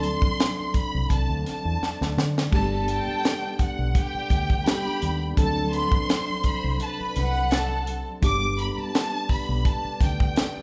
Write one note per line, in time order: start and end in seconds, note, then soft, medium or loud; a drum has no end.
0.00 0.14 D2 loud
0.00 10.62 D3 medium
0.00 2.51 F#3 medium
0.00 2.50 A3 medium
0.00 2.48 C4 medium
0.00 2.50 C4 medium
0.00 2.48 D4 medium
0.00 8.18 D4 medium
0.00 2.49 A4 medium
0.00 closed hi-hat medium
0.04 0.75 C6 loud
0.22 muted fingered electric bass stroke soft
0.22 kick loud
0.40 snare loud
0.40 closed hi-hat medium
0.74 1.08 B5 medium
0.74 muted fingered electric bass stroke soft
0.74 kick medium
0.74 closed hi-hat medium
0.95 1.08 C2 medium
1.10 1.27 C2 medium
1.10 1.46 A5 medium
1.10 kick medium
1.10 closed hi-hat medium
1.29 1.43 D2 medium
1.46 2.14 A5 medium
1.46 snare soft
1.46 closed hi-hat medium
1.65 1.79 E2 medium
1.82 muted fingered electric bass stroke soft
1.82 snare medium
2.01 2.15 D2 medium
2.01 snare medium
2.17 2.47 D3 medium
2.17 snare loud
2.38 snare medium
2.51 2.99 G1 loud
2.51 4.61 G3 medium
2.51 5.34 G3 medium
2.51 2.59 A3 soft
2.51 5.34 B3 medium
2.51 4.62 D4 medium
2.51 4.63 G4 medium
2.51 3.55 A4 loud
2.51 3.55 A5 loud
2.51 2.70 A5 medium
2.51 kick loud
2.51 crash medium
2.59 4.65 B3 medium
2.88 3.56 G5 medium
2.88 closed hi-hat medium
3.08 muted fingered electric bass stroke soft
3.25 snare loud
3.25 closed hi-hat medium
3.59 3.96 F#5 medium
3.59 muted fingered electric bass stroke medium
3.59 kick medium
3.59 closed hi-hat medium
3.79 3.93 B1 medium
3.95 4.62 G4 loud
3.95 4.62 G5 loud
3.95 4.67 G5 medium
3.95 kick loud
3.95 closed hi-hat medium
4.15 muted fingered electric bass stroke soft
4.30 4.61 D2 medium
4.30 kick medium
4.30 closed hi-hat medium
4.50 kick medium
4.66 5.37 G3 medium
4.66 5.37 B3 soft
4.66 5.36 D4 soft
4.66 5.18 G4 loud
4.66 5.38 G4 medium
4.66 5.18 G5 loud
4.66 5.22 B5 loud
4.66 snare loud
4.66 closed hi-hat medium
5.02 5.33 D#2 medium
5.02 closed hi-hat medium
5.36 5.84 D2 loud
5.36 8.19 C3 medium
5.36 8.18 F#3 medium
5.36 8.19 A3 medium
5.36 8.18 C4 medium
5.36 8.19 D4 medium
5.36 5.66 A4 medium
5.36 8.19 A4 medium
5.36 5.66 A5 loud
5.36 5.71 A5 loud
5.36 kick loud
5.36 closed hi-hat loud
5.73 6.02 B3 medium
5.73 6.02 B5 medium
5.73 6.45 C6 loud
5.73 closed hi-hat medium
5.92 kick loud
6.08 6.37 C5 medium
6.08 6.37 C6 medium
6.08 snare loud
6.08 closed hi-hat loud
6.44 6.73 C5 medium
6.44 6.81 B5 loud
6.44 6.73 C6 loud
6.44 muted fingered electric bass stroke soft
6.44 kick medium
6.44 closed hi-hat medium
6.64 6.78 C2 medium
6.80 7.47 B4 loud
6.80 6.98 A5 medium
6.80 7.47 B5 loud
6.80 closed hi-hat medium
7.00 muted fingered electric bass stroke soft
7.16 8.02 C2 medium
7.16 7.84 F#5 medium
7.16 snare soft
7.16 closed hi-hat medium
7.51 8.03 A4 loud
7.51 8.03 A5 loud
7.51 snare loud
7.51 closed hi-hat medium
7.87 closed hi-hat medium
8.21 8.70 G1 loud
8.21 10.62 G3 medium
8.21 10.62 B3 medium
8.21 10.62 D4 medium
8.21 10.62 G4 medium
8.21 8.57 D6 loud
8.21 kick loud
8.21 closed hi-hat medium
8.59 8.70 B5 medium
8.59 closed hi-hat medium
8.72 8.78 B5 medium
8.78 9.30 A5 loud
8.78 muted fingered electric bass stroke soft
8.95 snare loud
8.95 closed hi-hat loud
9.29 9.66 B5 medium
9.29 muted fingered electric bass stroke soft
9.29 kick medium
9.29 open hi-hat soft
9.49 9.63 B1 medium
9.65 10.02 A5 medium
9.65 kick medium
9.65 closed hi-hat medium
9.85 muted fingered electric bass stroke soft
10.01 10.31 D2 medium
10.01 10.62 G5 medium
10.01 kick medium
10.01 snare soft
10.01 closed hi-hat medium
10.20 kick loud
10.36 snare loud
10.36 closed hi-hat medium